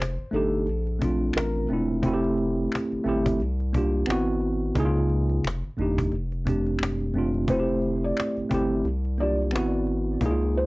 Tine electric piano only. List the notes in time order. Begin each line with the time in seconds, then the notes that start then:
0.31 A3 D4 D#4
0.36 G4
0.99 A3 C4 D4
1.04 F4
1.69 A3 C4 D4
1.73 E4
2.02 A3 C4 E4
2.07 F#4
2.14 G4
3.04 A3 C4 E4
3.09 G4
3.73 A#3 D4 F4
3.78 G4
4.07 B3 C4 E4
4.12 F#4
4.75 C#3 A#3 D#4 E4
4.80 G#4
4.85 F4
5.77 F2 A3 D4 D#4
5.82 G4
6.45 F2 A3 C4 D4
6.49 G4
7.13 F2 A3 C4 D4
7.18 F4
7.48 A3 C4 E4
7.53 F#4
7.60 G4
8.49 A3 C4 E4
8.54 G4
9.18 A#3 D4 F4
9.23 G4
9.52 B3 C4 E4
9.57 F#4
10.21 A#3 D#4 E4
10.26 G#4
10.31 F4